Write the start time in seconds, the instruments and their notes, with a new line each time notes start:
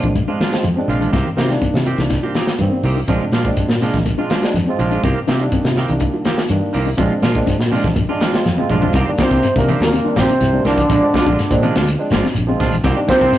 Already playing: tine electric piano F3 G#3 C4 D4
0.03 fingered electric bass A#1, kick, closed hi-hat, high conga
0.15 handpan G#3, kick, closed hi-hat, shekere
0.27 tine electric piano F3 G#3 C4 F4, clean electric guitar G#3 D4 F4, handpan D4
0.40 clean electric guitar F3 G#3 D4 F4, snare, closed hi-hat, high conga, shekere
0.51 tine electric piano F3 G#3 C4 F4, handpan F4, snare, closed hi-hat
0.63 fingered electric bass F2, closed hi-hat, high conga, shekere
0.76 tine electric piano F3 G#3 C4 D4, handpan C4
0.88 fingered electric bass A#1, clean electric guitar F3 G#3 D4 F4, closed hi-hat, low conga, shekere
1.01 clean electric guitar G#3 D4 F4, handpan D4, closed hi-hat, high conga
1.12 fingered electric bass C2, clean electric guitar D#3 A#3 C4 G4, handpan C4, kick, snare, closed hi-hat, shekere
1.25 high conga
1.37 fingered electric bass C3, clean electric guitar D#3 A#3 C4 G4, handpan D#4, snare, closed hi-hat, high conga, shekere
1.50 tine electric piano D#3 G3 A#3 D4, snare, closed hi-hat
1.61 handpan C4, kick, closed hi-hat, shekere
1.74 fingered electric bass C3, snare, high conga
1.86 clean electric guitar D#3 C4 G4, handpan F4, closed hi-hat, low conga, shekere
1.98 fingered electric bass C2, tine electric piano D#3 G3 A#3 D4, snare, closed hi-hat, high conga
2.10 handpan D#4, kick, snare, closed hi-hat, shekere
2.23 clean electric guitar A#3 C4 G4, handpan F4
2.35 clean electric guitar D#3 A#3 C4 G4, snare, closed hi-hat, high conga, shekere
2.47 snare
2.58 fingered electric bass G2, tine electric piano D#3 G3 A#3 C4, closed hi-hat, high conga, shekere
2.72 handpan C4
2.83 fingered electric bass C2, clean electric guitar D#3 A#3 C4 G4, open hi-hat, low conga, shekere
2.96 handpan D#4
3.08 fingered electric bass A#1, tine electric piano F3 G#3 C4 D4, clean electric guitar F3 G#3 D4 F4, handpan C4, kick, closed hi-hat, shekere
3.21 low conga
3.32 fingered electric bass A#2, clean electric guitar F3 G#3 D4 F4, handpan A#3, snare, closed hi-hat, high conga, shekere
3.45 tine electric piano F3 G#3 C4 D4, kick, closed hi-hat
3.57 kick, closed hi-hat, shekere
3.69 fingered electric bass A#2, snare
3.81 tine electric piano F3 G#3 C4 D4, clean electric guitar F3 G#3 D4 F4, handpan C4, open hi-hat, low conga, shekere
3.94 fingered electric bass A#1, kick, snare, closed hi-hat, high conga
4.05 handpan A#3, kick, closed hi-hat, shekere
4.17 tine electric piano F3 G#3 C4 F4, clean electric guitar G#3 D4 F4, handpan D4
4.30 clean electric guitar F3 G#3 D4 F4, snare, closed hi-hat, high conga, shekere
4.42 tine electric piano F3 G#3 C4 D4, handpan F4, snare, closed hi-hat
4.54 fingered electric bass F2, closed hi-hat, high conga, shekere
4.67 tine electric piano F3 G#3 C4 F4, handpan C4
4.79 fingered electric bass A#1, clean electric guitar F3 G#3 D4 F4, closed hi-hat, low conga, shekere
4.91 clean electric guitar G#3 D4 F4, handpan D4, closed hi-hat
5.03 fingered electric bass C2, clean electric guitar D#3 A#3 C4 G4, handpan C4, kick, closed hi-hat, shekere
5.27 fingered electric bass C3, clean electric guitar D#3 A#3 C4 G4, handpan D#4, snare, closed hi-hat, high conga, shekere
5.39 tine electric piano D#3 G3 A#3 D4, closed hi-hat
5.52 handpan C4, kick, closed hi-hat, shekere
5.64 fingered electric bass C3, snare
5.76 clean electric guitar D#3 A#3 C4 G4, handpan F4, snare, closed hi-hat, low conga, shekere
5.88 fingered electric bass C2, tine electric piano D#3 G3 A#3 D4, closed hi-hat, high conga
6.00 handpan D#4, kick, closed hi-hat, shekere
6.14 handpan F4
6.25 clean electric guitar D#3 A#3 C4 G4, snare, closed hi-hat, high conga, shekere
6.38 handpan D#4, snare
6.49 fingered electric bass G2, tine electric piano D#3 G3 A#3 D4, closed hi-hat, high conga, shekere
6.73 fingered electric bass C2, clean electric guitar D#3 A#3 C4 G4, open hi-hat, low conga, shekere
6.86 handpan D#4
6.97 fingered electric bass A#1, tine electric piano F3 G#3 C4 D4, clean electric guitar F3 G#3 F4, handpan C4, muted clean electric guitar stroke, kick, closed hi-hat, shekere
7.22 fingered electric bass A#2, clean electric guitar F3 G#3 D4 F4, handpan A#3, snare, closed hi-hat, high conga, shekere
7.35 tine electric piano F3 G#3 C4 D4, kick, closed hi-hat
7.47 handpan D4, kick, closed hi-hat, shekere
7.59 fingered electric bass A#2, snare
7.71 clean electric guitar F3 G#3 D4 F4, tine electric piano F3 G#3 C4 D4, handpan C4, open hi-hat, low conga, shekere
7.84 fingered electric bass A#1, kick, snare, closed hi-hat, high conga
7.96 handpan A#3, kick, closed hi-hat, shekere
8.08 tine electric piano F3 G#3 C4 D4, clean electric guitar G#3 D4 F4, handpan D4
8.20 clean electric guitar F3 G#3 D4 F4, tine electric piano G5, snare, closed hi-hat, high conga, shekere
8.33 tine electric piano F3 G#3 C4 F4, handpan F4, snare, closed hi-hat
8.46 fingered electric bass F2, tine electric piano F5, snare, high conga, shekere
8.58 tine electric piano F3 G#3 C4 F4, handpan C4, high tom
8.70 fingered electric bass A#1, clean electric guitar F3 G#3 D4 F4, tine electric piano D5, mid tom, low conga, shekere
8.82 clean electric guitar G#3 D4 F4, handpan D4, floor tom, high conga
8.93 fingered electric bass C2, clean electric guitar D#3 A#3 C4 G4, handpan C4, kick, snare, closed hi-hat, shekere
9.07 tine electric piano D#3 G3 A#3 D4
9.18 trombone section C3, clean electric guitar D#3 A#3 C4 G4, handpan A#3, trombone C4, muted fingered electric bass stroke, kick, snare, closed hi-hat, high conga
9.22 trumpet C5
9.31 fingered electric bass C2, clean electric guitar A#3 C4 G4, kick, closed hi-hat, shekere
9.43 handpan C4, closed hi-hat, shekere
9.56 trombone section A#2, fingered electric bass C3, tine electric piano D#3 G3 A#3 D4, trombone A#3, handpan C4, trumpet A#4, kick, shekere
9.68 clean electric guitar D#3 A#3 C4 G4, handpan A#3, closed hi-hat, high conga, low conga, shekere
9.80 fingered electric bass D#2, trombone section A#2, trombone A#3, trumpet A#4, snare, shekere
9.93 handpan C4, closed hi-hat, shekere
10.05 tine electric piano D#3 G3 A#3 D4, handpan D#4
10.15 fingered electric bass A#1, clean electric guitar D#3 A#3 C4 G4, snare, closed hi-hat, high conga, shekere
10.20 trombone section C3, trombone C4, trumpet C5
10.29 handpan D4, closed hi-hat, low conga, shekere
10.41 fingered electric bass C2, closed hi-hat, shekere
10.53 tine electric piano D#3 G3 A#3 D4, handpan C4
10.65 fingered electric bass C2, trombone section D3, clean electric guitar D#3 A#3 C4 G4, handpan A#3, trombone D4, snare, closed hi-hat, low conga, shekere
10.70 trumpet D5
10.77 kick, closed hi-hat, high conga, shekere
10.90 fingered electric bass A#1, clean electric guitar F3 G#3 D4, handpan D4, muted clean electric guitar stroke, kick, closed hi-hat, shekere
11.01 tine electric piano F3 G#3 C4 D4
11.14 clean electric guitar F3 G#3 D4 F4, handpan C4, muted fingered electric bass stroke, kick, snare, closed hi-hat, high conga
11.27 fingered electric bass A#1, clean electric guitar G#3 D4 F4, handpan D4, kick, shekere
11.39 snare, closed hi-hat, shekere
11.50 fingered electric bass A#2, tine electric piano F3 G#3 C4 D4, kick, shekere
11.62 clean electric guitar F3 G#3 D4 F4, handpan C4, closed hi-hat, high conga, low conga, shekere
11.75 fingered electric bass D2, clean electric guitar G#3 D4 F4, handpan A#3, snare, shekere
11.87 closed hi-hat, shekere
11.99 tine electric piano F3 G#3 C4 D4
12.11 fingered electric bass G#1, clean electric guitar F3 G#3 D4 F4, handpan A#3, snare, closed hi-hat, high conga, shekere
12.23 handpan C4, snare, shekere
12.35 fingered electric bass A#1, closed hi-hat, shekere
12.47 tine electric piano F3 G#3 C4 F4, handpan C4
12.60 fingered electric bass A#1, clean electric guitar F3 D4 F4, muted clean electric guitar stroke, kick, snare, closed hi-hat, low conga, shekere
12.72 high conga, shekere
12.84 fingered electric bass C2, clean electric guitar A#3 C4 G4, handpan C4, muted clean electric guitar stroke, kick, snare, closed hi-hat, shekere
12.95 tine electric piano D#3 G3 A#3 D4
13.08 trombone section C3, clean electric guitar D#3 A#3 C4 G4, handpan A#3, trombone C4, trumpet C5, muted fingered electric bass stroke, kick, snare, closed hi-hat, high conga
13.21 fingered electric bass C2, clean electric guitar A#3 C4 G4, kick, snare, closed hi-hat, shekere
13.32 handpan C4, closed hi-hat, shekere